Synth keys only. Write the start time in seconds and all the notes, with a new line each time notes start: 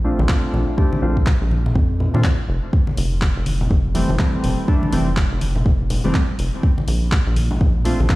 0.04 A3 C4 D4 F4
0.29 A3 C4 D4 F4
0.77 A3 C4 D4 G4
1.02 A3 C4 D4 F4
2.14 A3 C4 D4 F4
3.94 E3 G3 A3 C4
4.19 E3 G3 A3 C4
4.68 E3 G3 A3 D4
4.92 E3 G3 A3 C4
6.04 E3 G3 A3 C4
7.85 A3 C4 D4 F4
8.09 A3 C4 D4 F4